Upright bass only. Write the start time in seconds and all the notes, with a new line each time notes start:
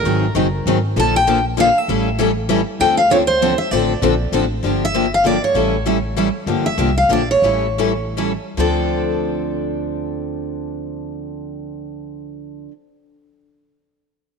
0.04 G#1
0.35 F#1
0.66 G#1
0.96 A#1
1.88 A1
2.80 D2
3.71 A1
4.02 A#1
4.32 A1
4.63 G1
5.54 A1
6.46 G1
6.77 C2
7.09 A#1
7.42 A1
8.57 D2